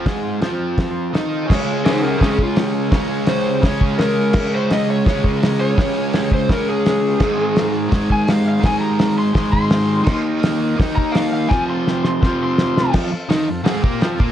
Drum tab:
CC |--------|x-------|--------|x-------|
HH |o-o-o-o-|--o-o-o-|o-o-o-o-|--o-o-o-|
SD |o-o-o-o-|o-o-o-o-|o-o-o-o-|o-o-o-o-|
BD |o---o---|o---oo--|o---oo--|o---oo--|

CC |--------|x-------|--------|x-------|
HH |o-o-o-o-|--o-o-o-|o-o-o-o-|--o-o-o-|
SD |o-o-o-o-|o-o-o-o-|o-o-o-o-|o-o-o-o-|
BD |o--oo---|o---oo--|o---oo--|o---oo--|

CC |--------|x-------|
HH |--------|--o-o-o-|
SD |o-ooo-oo|o-o-o-o-|
BD |o---o---|o----o-o|